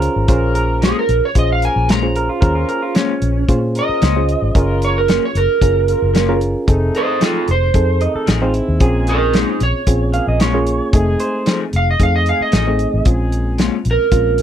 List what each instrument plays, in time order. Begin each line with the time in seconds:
Already playing: reed electric piano C#4 F4 G#4 C5, clean electric guitar A#4
0.02 closed hi-hat
0.16 fingered electric bass G#1
0.28 fingered electric bass A#1, horn section A#3 C#4 G#4 A#4, reed electric piano C#4 F4 G#4 C5, kick, closed hi-hat
0.55 clean electric guitar A#4, closed hi-hat
0.82 clean electric guitar A#2 G#3 C#4 F4, electric slide guitar G#4, snare, closed hi-hat
0.99 electric slide guitar A#4
1.09 fingered electric bass A#1, closed hi-hat
1.25 electric slide guitar C#5
1.35 fingered electric bass A#1, reed electric piano C#4 F4 G#4 C5, electric slide guitar D#5, kick, closed hi-hat
1.52 electric slide guitar F5
1.62 horn section A#3 C#4 G#4 A#4, electric slide guitar G#5, closed hi-hat
1.76 fingered electric bass A#1
1.88 clean electric guitar A#2 G#3 C#4 F4, electric slide guitar A#5, snare, closed hi-hat
2.03 reed electric piano C#4 F4 G#4 C5
2.16 clean electric guitar A#4, closed hi-hat
2.29 clean electric guitar F4
2.41 fingered electric bass D#2, horn section A#3 C#4 G#4 A#4, reed electric piano C#4 F4 G#4 C5, clean electric guitar A#4, kick, closed hi-hat
2.55 clean electric guitar F4
2.69 clean electric guitar A#4, closed hi-hat
2.82 clean electric guitar F4
2.95 clean electric guitar A#2 G#3 C#4 F4, snare, closed hi-hat
3.22 fingered electric bass A#1, closed hi-hat
3.48 fingered electric bass A#2, reed electric piano C#4 F4 G#4 C5, kick, closed hi-hat
3.75 horn section A#3 C#4 G#4 A#4, electric slide guitar D#5, closed hi-hat
3.89 muted fingered electric bass stroke
4.01 fingered electric bass C#2, clean electric guitar A#2 G#3 C#4 F4, snare, closed hi-hat
4.16 reed electric piano C#4 F4 G#4 C5
4.29 closed hi-hat
4.42 fingered electric bass G#1
4.55 fingered electric bass F#1, horn section A#3 F4 A#4, reed electric piano C#4 F4 G#4 A#4, kick, closed hi-hat
4.82 electric slide guitar C#5, closed hi-hat
4.98 electric slide guitar A#4
5.08 clean electric guitar F#3 A#3 C#4 F4, snare, closed hi-hat
5.25 electric slide guitar C#5
5.35 fingered electric bass F#1, electric slide guitar A#4, closed hi-hat
5.61 fingered electric bass F#1, reed electric piano C#4 F4 G#4 A#4, kick, closed hi-hat
5.88 horn section A#3 F4 A#4, closed hi-hat
6.02 fingered electric bass F#1
6.14 clean electric guitar F#3 A#3 C#4 F4, snare, closed hi-hat
6.29 reed electric piano C#4 F4 G#4 A#4
6.41 closed hi-hat
6.68 fingered electric bass F1, horn section D#3 A3 D#4, reed electric piano C4 D#4 G#4 A4, kick, closed hi-hat
6.95 electric slide guitar C5 D#5, closed hi-hat
7.20 clean electric guitar F3 A3 D#4 G#4, electric slide guitar F4 A4, snare, closed hi-hat
7.48 fingered electric bass F1, electric slide guitar C5, closed hi-hat
7.74 fingered electric bass F2, reed electric piano C4 D#4 G#4 A4, kick, closed hi-hat
8.01 horn section D#3 A3 D#4, clean electric guitar D#5, closed hi-hat
8.15 clean electric guitar A4, muted fingered electric bass stroke
8.27 fingered electric bass A1, clean electric guitar F3 A3 D#4 G#4, snare, closed hi-hat
8.41 reed electric piano C4 D#4 G#4 C5, clean electric guitar F4
8.54 clean electric guitar E4, closed hi-hat
8.68 fingered electric bass D#2
8.80 fingered electric bass A#1, horn section G#3 A#3 G#4, reed electric piano C4 C#4 F4 G#4, clean electric guitar G#4, kick, closed hi-hat
9.07 electric slide guitar A#4 D#5, closed hi-hat
9.33 clean electric guitar A#2 G#3 C#4 F4, electric slide guitar D#4 G#4, snare, closed hi-hat
9.60 fingered electric bass A#1, electric slide guitar C#5, closed hi-hat
9.87 fingered electric bass A#1, reed electric piano C4 C#4 F4 G#4, kick, closed hi-hat
10.13 horn section G#3 A#3 G#4, clean electric guitar F5, closed hi-hat
10.27 fingered electric bass A#1, clean electric guitar D#5
10.40 clean electric guitar A#2 G#3 C#4 F4 C#5, snare, closed hi-hat
10.54 reed electric piano A#3 C#4 F4 G#4
10.67 closed hi-hat
10.93 fingered electric bass F1, horn section G#3 A3 D#4 G#4, reed electric piano A3 C4 D#4 G#4, kick, closed hi-hat
11.20 clean electric guitar C5, closed hi-hat
11.46 clean electric guitar F3 A3 D#4 G#4, snare, closed hi-hat
11.73 fingered electric bass F1, electric slide guitar F5, closed hi-hat
11.91 electric slide guitar D#5
12.00 fingered electric bass F2, reed electric piano A3 C4 D#4 G#4, electric slide guitar F5, kick, closed hi-hat
12.16 electric slide guitar D#5
12.26 horn section G#3 A3 D#4 G#4, electric slide guitar F5, closed hi-hat
12.40 electric slide guitar D#5, muted fingered electric bass stroke
12.52 fingered electric bass A1, clean electric guitar F3 A3 D#4 G#4, snare, closed hi-hat
12.56 electric slide guitar D#5
12.67 reed electric piano A3 C4 D#4 G#4
12.79 closed hi-hat
12.94 fingered electric bass A1
13.05 fingered electric bass A#1, reed electric piano G#3 C4 C#4 F4, horn section G#3 A#3 G#4, kick, closed hi-hat
13.32 closed hi-hat
13.58 clean electric guitar A#2 G#3 C#4 F4, snare, closed hi-hat
13.85 fingered electric bass A#1, closed hi-hat
13.91 electric slide guitar A#4
14.11 fingered electric bass A#1, reed electric piano G#3 C4 C#4 F4, kick, closed hi-hat
14.38 horn section G#3 A#3 G#4, closed hi-hat